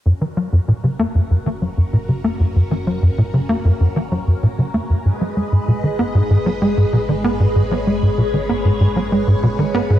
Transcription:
<<
  \new Staff \with { instrumentName = "String machine" } { \time 4/4 \key fis \mixolydian \tempo 4 = 96 << { ais'1~ | ais'1 | dis''1 | cis''1 | } \\ { <cis' fis'>1~ | <cis' fis'>1 | <gis gis' b'>1~ | <gis gis' b'>1 | } >> }
  \new Staff \with { instrumentName = "Analog synth bass" } { \clef bass \time 4/4 \key fis \mixolydian fis,16 e16 fis16 fis,16 ais,16 cis16 ais16 fis,16 fis,16 e16 fis16 fis,16 ais,16 cis16 ais16 fis,16 | fis,16 e16 fis16 fis,16 ais,16 cis16 ais16 fis,16 fis,16 e16 fis16 fis,16 ais,16 cis16 ais16 fis,16 | gis,16 fis16 gis16 gis,16 b,16 dis16 b16 gis,16 gis,16 fis16 gis16 gis,16 b,16 dis16 b16 gis,16 | gis,16 fis16 gis16 gis,16 b,16 dis16 b16 gis,16 gis,16 fis16 gis16 gis,16 b,16 dis16 b16 gis,16 | }
  \new Staff \with { instrumentName = "Synth drone" } { \clef bass \time 4/4 \key fis \mixolydian fis,,1~ | fis,,1 | gis,,1~ | gis,,1 | }
>>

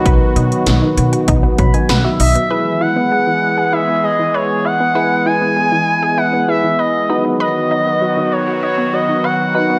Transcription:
<<
  \new Staff \with { instrumentName = "Analog synth lead" } { \time 4/4 \key e \major \tempo 4 = 98 r2. r8 e''8~ | e''8 fis''4. e''8 dis''8 cis''8 fis''8~ | fis''8 gis''4. fis''8 e''8 dis''8. r16 | dis''4. cis''8 cis''8 dis''8 fis''8 fis''8 | }
  \new Staff \with { instrumentName = "Synth keys" } { \time 4/4 \key e \major << { r2 r8 b''16 gis''16 fis''16 e''16 dis''8 | r1 | r1 | r1 | } \\ { <dis' fis' b'>2.~ <dis' fis' b'>8 r8 | <e' gis' b'>1 | <e' gis' b'>2~ <e' gis' b'>8 <e' gis' b'>4 <dis' fis' b'>8~ | <dis' fis' b'>2.~ <dis' fis' b'>8 <dis' fis' b'>8 | } >> }
  \new Staff \with { instrumentName = "Synth arpeggio sound" } { \time 4/4 \key e \major b'16 r16 dis'16 r8 dis16 r16 fis'16 dis'16 b16 fis16 dis16 b'16 fis'16 dis'16 b16 | b'16 r16 e'16 b16 gis16 e16 r16 gis'16 e'16 b16 gis16 e16 b'16 r16 e'16 b16 | b'16 r16 e'16 b16 gis16 e16 r16 gis'16 e'16 b16 gis16 e16 b'16 r16 dis'16 b16 | b'16 r16 dis'16 b16 fis16 dis16 r16 fis'16 dis'16 b16 fis16 dis16 b'16 r16 dis'16 b16 | }
  \new Staff \with { instrumentName = "Analog synth pad" } { \clef bass \time 4/4 \key e \major << { <dis fis fis'>1 | <e gis gis'>1~ | <e gis gis'>2.~ <e gis gis'>8 <dis fis fis'>8~ | <dis fis fis'>1 | } \\ { b1 | b1~ | b1~ | b1 | } >> }
  \new Staff \with { instrumentName = "Upright bass" } { \clef bass \time 4/4 \key e \major b,,16 r16 b,16 r16 b,,16 r16 b,16 r16 b,,16 r16 b,16 r16 b,,16 r16 b,,16 r16 | r1 | r1 | r1 | }
  \new DrumStaff \with { instrumentName = "Drums" } \drummode { \time 4/4 <hh bd>8 hh16 hh16 <hh sn>8 hh16 hh16 <hh bd>8 <hh bd>16 hh16 <hh sn>8 hho16 hh16 | r4 r4 r4 r4 | r4 r4 r4 r4 | r4 r4 r4 r4 | }
>>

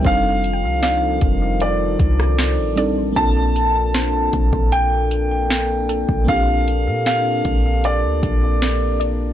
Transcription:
<<
  \new Staff \with { instrumentName = "Grand piano" } { \time 4/4 \key bes \major \tempo 4 = 77 f''4 f''4 d''4. r8 | a''2 g''2 | f''4 f''4 d''4. r8 | }
  \new Staff \with { instrumentName = "Synth pluck" } { \time 4/4 \key bes \major c''16 f''16 g''8 d''2 c''8 d''8~ | d''8 r8 c''2~ c''8 a'8~ | a'2 r4. d''8 | }
  \new Staff \with { instrumentName = "FM electric piano" } { \time 4/4 \key bes \major <g c' d' ees' a'>2.~ <g c' d' ees' a'>8 <g c' d' ees' a'>8 | <bes c' d' f' a'>1 | <bes c' d' f' g'>1 | }
  \new Staff \with { instrumentName = "French horn section" } { \time 4/4 \key bes \major <ees f a'>1 | <bes d'>1~ | <bes d'>1 | }
  \new Staff \with { instrumentName = "808-style bass" } { \clef bass \time 4/4 \key bes \major f,,8. c,8. f,,4 c,8. a,,8. | bes,,4. bes,,16 bes,,2 bes,,16 | bes,,8. bes,8. bes,,8. d,16 bes,,4. | }
  \new DrumStaff \with { instrumentName = "Drums" } \drummode { \time 4/4 <hh bd>8 hh8 <hh sn>8 <hh bd>8 hh8 <hh bd>16 ss16 <hh sn>8 hh8 | <hh bd>8 hh8 <hh sn>8 <hh bd>16 bd16 hh8 hh8 <hh sn>8 hh16 bd16 | <hh bd>8 hh8 <hh sn>8 <hh bd>8 hh8 <hh bd>8 <hh sn>8 hh8 | }
>>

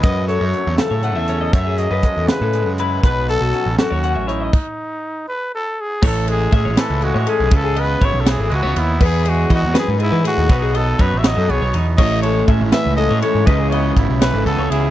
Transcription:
<<
  \new Staff \with { instrumentName = "Clean electric guitar" } { \time 6/8 \key b \mixolydian \tempo 4. = 80 b'8 a'16 fis'8 r16 a'16 cis''16 fis''16 e''16 cis''16 dis''16 | cis''16 gis'8 b'16 a'8 gis'16 a'8 r16 b'8 | b'8 a'16 fis'8 r16 a'16 cis''16 fis''16 e''16 cis''16 dis''16 | r2. |
cis''8 a'8 e''16 cis''16 b'8 a'16 cis''16 a'8 | b'16 gis'16 dis''8 cis''8 cis''16 a'16 gis'16 cis''8 r16 | b'8 gis'8 dis''16 cis''16 b'8 gis'16 b'16 gis'8 | b'16 gis'16 dis''8 cis''8 cis''16 a'16 gis'16 cis''8 r16 |
cis''8 a'8 e''16 cis''16 b'8 a'16 cis''16 a'8 | b'16 gis'16 dis''8 cis''8 cis''16 a'16 gis'16 cis''8 r16 | }
  \new Staff \with { instrumentName = "Trumpet" } { \time 6/8 \key b \mixolydian dis''8 cis''4 a'4. | e''8 dis''4 b'4 r8 | b'8 a'4 fis'4 e'8 | dis'4. b'8 a'8 gis'8 |
a'8 gis'8 gis'8 a'8 fis'8 gis'8 | a'8 b'8 cis''16. a'32 gis'8 fis'8 e'8 | gis'8 fis'8 fis'8 gis'8 e'8 fis'8~ | fis'8 a'8 b'16. e''32 dis''8 cis''8 r8 |
dis''8 cis''8 r8 e''8 dis''8 cis''8 | dis''8 cis''8 r8 b'8 a'8 gis'8 | }
  \new Staff \with { instrumentName = "Overdriven electric guitar" } { \time 6/8 \key b \mixolydian r2. | r2. | r2. | r2. |
r2. | r2. | r2. | r2. |
<a, e a cis' e'>2~ <a, e a cis' e'>8 <a, e a cis' e'>8 | <cis gis cis' e'>2~ <cis gis cis' e'>8 <cis gis cis' e'>8 | }
  \new Staff \with { instrumentName = "Clean electric guitar" } { \clef bass \time 6/8 \key b \mixolydian << { gis4 a4 a8 cis'8 | r4 gis4 gis8 e'8 | r4 cis'4 cis'8 dis'8 | r2. |
r8 gis8 cis'4 gis8 cis'8 | r8 b8 e'4 gis16 b16 b8 | r8 gis8 dis'2 | <fis b dis'>8 b8 dis'4 b8 dis'8 |
r8 gis8 cis'4 gis8 cis'8 | r8 b8 e'4 b8 e'8 | } \\ { <fis, e>8 fis4 cis4. | fis,8 fis4 cis4. | b,8 fis4 fis,4. | r2. |
a,4. e4. | cis4. e4. | e,4. fis,8 gis,8 a,8 | b,4. fis4. |
a,4. e4. | cis4. e4. | } >> }
  \new Staff \with { instrumentName = "Picked electric bass" } { \clef bass \time 6/8 \key b \mixolydian fis,8. fis,16 r16 e,16 r16 a,8 e,8. | fis,8. fis,16 r16 e,16 r16 a,8 fis,8. | b,,8. b,,16 r16 a,,16 r16 dis,8 a,,8. | r2. |
a,,4 a,16 a,,16 r16 cis,8 a,16 r16 b,,16 | cis,4 gis,,16 b,,8 gis,,16 cis,16 cis,16 dis,8 | e,4 e16 e,16 r16 gis,8 e16 r16 dis,16 | b,,4 fis,16 a,,8 fis,16 b,,16 b,,16 e,8 |
a,,4 a,16 a,,16 r16 cis,8 a,16 r16 gis,16 | cis,4 gis,,16 b,,8 gis,,16 cis,16 cis,16 cis,8 | }
  \new DrumStaff \with { instrumentName = "Drums" } \drummode { \time 6/8 <hh bd>8 hh8 hh8 <hh sn>8 hh8 hh8 | <hh bd>8 hh8 <hh bd>8 <hh sn>8 hh8 hh8 | <hh bd>8 hh8 hh8 <hh sn>8 hh8 hh8 | <cymc bd>4. r4. |
<cymc bd>8 cymr8 <bd cymr>8 <cymr sn>8 cymr8 cymr8 | <bd cymr>8 cymr8 <bd cymr>8 <cymr sn>8 cymr8 cymr8 | <cymc bd>8 cymr8 <bd cymr>8 <cymr sn>8 cymr8 cymr8 | <bd cymr>8 cymr8 <bd cymr>8 <cymr sn>8 cymr8 cymr8 |
<cymc bd>8 cymr8 <bd cymr>8 <cymr sn>8 cymr8 cymr8 | <bd cymr>8 cymr8 <bd cymr>8 <cymr sn>8 cymr8 cymr8 | }
>>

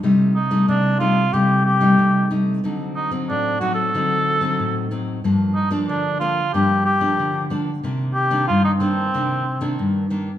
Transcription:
<<
  \new Staff \with { instrumentName = "Cor anglais" } { \time 4/4 \key g \minor \tempo 4 = 92 r8 ees'8 d'8 f'8 g'8 g'4 r8 | r8 ees'8 d'8 fis'16 a'4.~ a'16 r8 | r8 ees'8 d'8 f'8 g'8 g'4 r8 | r8 g'8 f'16 ees'16 c'4. r4 | }
  \new Staff \with { instrumentName = "Nylon-string guitar" } { \time 4/4 \key g \minor << { <g a ees'>8 r16 <g a ees'>8. <g a ees'>16 r16 <g a ees'>8. <g a ees'>8. <g a ees'>8 | <fis c' ees'>8. <fis c' ees'>8. <fis c' ees'>8 <fis c' ees'>8. <fis c' ees'>8. <fis c' ees'>8 | <f bes d'>8 r16 <f bes d'>8. <f bes d'>16 r16 <f bes d'>8 r16 <f bes d'>8. <f bes d'>16 r16 | <ees bes d'>8. <ees bes d'>8. <ees bes d'>8 <ees bes d'>8 r16 <ees bes d'>8. <ees bes d'>16 r16 | } \\ { c4 c4 c4 c4 | d4 a,4 d4 a,4 | g,4 d4 g,4 d4 | c4 g,4 c4 g,4 | } >> }
>>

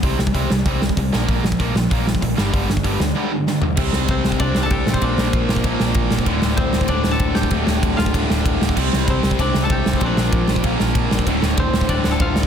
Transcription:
<<
  \new Staff \with { instrumentName = "Koto" } { \time 4/4 \key c \mixolydian \tempo 4 = 192 r1 | r1 | r1 | r4 <c' c''>4 <d' d''>8. <a' a''>16 <g' g''>8. <c' c''>16 |
<d' d''>2 r2 | r4 <c' c''>4 <d' d''>8. <a' a''>8. <g' g''>8~ | <g' g''>4. <f' f''>2 r8 | r4 <c' c''>4 <d' d''>8. <a' a''>16 <g' g''>8. <c' c''>16 |
<d' d''>2 r2 | r4 <c' c''>4 <d' d''>8. <a' a''>16 <f' f''>4 | }
  \new Staff \with { instrumentName = "Distorted electric guitar" } { \clef bass \time 4/4 \key c \mixolydian <c g c'>8 <c g>8 <c g c'>8 <c g>8 <c g c'>8 <c g>8 <c g>8 <bes, f bes>8 | <bes, f bes>8 <bes, f>8 <bes, f bes>8 <bes, f>8 <bes, f bes>8 <bes, f>8 <bes, f>8 <g, d g>8 | <g, d g>8 <g, d>8 <g, d g>8 <g, d>8 <g, d g>8 <g, d>8 <g, d>8 <g, d>8 | <c g c'>2 <c g c'>2 |
<bes, f bes>2 <bes, f bes>2 | <d, a, d>2 <d, a, d>2 | <d, a, d>2 <d, a, d>2 | <c g c'>2 <c g c'>2 |
<bes, f bes>2 <bes, f bes>2 | <d, a, d>2 <d, a, d>2 | }
  \new Staff \with { instrumentName = "Distorted electric guitar" } { \clef bass \time 4/4 \key c \mixolydian <c g c'>8 <c g>8 <c g c'>8 <c g>8 <c g c'>8 <c g>8 <c g>8 <bes, f bes>8 | <bes, f bes>8 <bes, f>8 <bes, f bes>8 <bes, f>8 <bes, f bes>8 <bes, f>8 <bes, f>8 <g, d g>8 | <g, d g>8 <g, d>8 <g, d g>8 <g, d>8 <g, d g>8 <g, d>8 <g, d>8 <g, d>8 | <c g c'>2 <c g c'>2 |
<bes, f bes>2 <bes, f bes>2 | <d, a, d>2 <d, a, d>2 | <d, a, d>2 <d, a, d>2 | <c g c'>2 <c g c'>2 |
<bes, f bes>2 <bes, f bes>2 | <d, a, d>2 <d, a, d>2 | }
  \new Staff \with { instrumentName = "Overdriven electric guitar" } { \clef bass \time 4/4 \key c \mixolydian r1 | r1 | r1 | <c g c'>1 |
<bes, f bes>1 | <d, a, d>1 | <d, a, d>1 | <c g c'>1 |
<bes, f bes>1 | <d, a, d>1 | }
  \new Staff \with { instrumentName = "Picked electric bass" } { \clef bass \time 4/4 \key c \mixolydian c,8 c,8 c,8 c,8 c,4 c,8 bes,,8 | bes,,8 bes,,8 bes,,8 bes,,8 bes,,4 bes,,8 g,,8 | g,,8 g,,8 g,,8 d,8 r2 | c,8 c,8 c,8 c,8 c,8 c,8 c,8 a,,8 |
bes,,8 bes,,8 bes,,8 bes,,8 bes,,8 bes,,8 bes,,8 bes,,8 | d,,8 d,,8 d,,8 d,,8 d,,8 d,,8 d,,8 d,,8 | d,,8 d,,8 d,,8 d,,8 d,,8 d,,8 d,,8 d,,8 | c,8 c,8 c,8 c,8 c,8 c,8 c,8 c,8 |
bes,,8 bes,,8 bes,,8 bes,,8 bes,,8 bes,,8 bes,,8 bes,,8 | d,,8 d,,8 d,,8 d,,8 d,,8 d,,8 d,,8 d,,8 | }
  \new DrumStaff \with { instrumentName = "Drums" } \drummode { \time 4/4 <hho bd>8 sn16 bd16 <hho bd>8 sn8 <hho bd>8 sn16 bd16 <hho bd>8 sn8 | <hho bd>8 sn16 bd16 <hho bd>8 sn8 <hho bd>8 sn16 bd16 <hho bd>8 sn8 | <hho bd>8 sn16 bd16 <hho bd>8 sn8 r4 sn8 tomfh8 | <cymc bd>8 sn8 <bd cymr>8 sn16 bd16 <bd cymr>8 sn8 <bd cymr>8 sn16 bd16 |
<bd cymr>8 sn8 <bd cymr>8 sn16 bd16 <bd cymr>8 sn8 <bd cymr>8 sn16 bd16 | <bd cymr>8 sn8 <bd cymr>8 sn16 bd16 <bd cymr>8 sn8 <bd cymr>8 sn16 bd16 | <bd cymr>8 sn8 <bd cymr>8 sn16 bd16 <bd cymr>8 sn8 <bd cymr>8 sn16 bd16 | <cymc bd>8 sn8 <bd cymr>8 sn16 bd16 <bd cymr>8 sn8 <bd cymr>8 sn16 bd16 |
<bd cymr>8 sn8 <bd cymr>8 sn16 bd16 <bd cymr>8 sn8 <bd cymr>8 sn16 bd16 | <bd cymr>8 sn8 <bd cymr>8 sn16 bd16 <bd cymr>8 sn8 <bd cymr>8 sn16 bd16 | }
>>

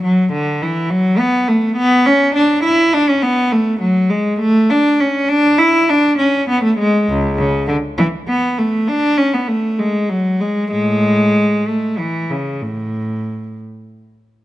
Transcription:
\new Staff \with { instrumentName = "Cello" } { \time 12/8 \key a \major \tempo 4. = 67 fis8 d8 e8 fis8 b8 a8 b8 cis'8 d'8 e'8 d'16 cis'16 b8 | a8 fis8 gis8 a8 d'8 cis'8 d'8 e'8 d'8 cis'8 b16 a16 gis8 | cis,8 cis8 d8 e8 b8 a8 d'8 cis'16 b16 a8 gis8 fis8 gis8 | <a, gis>4. a8 e8 cis8 a,4. r4. | }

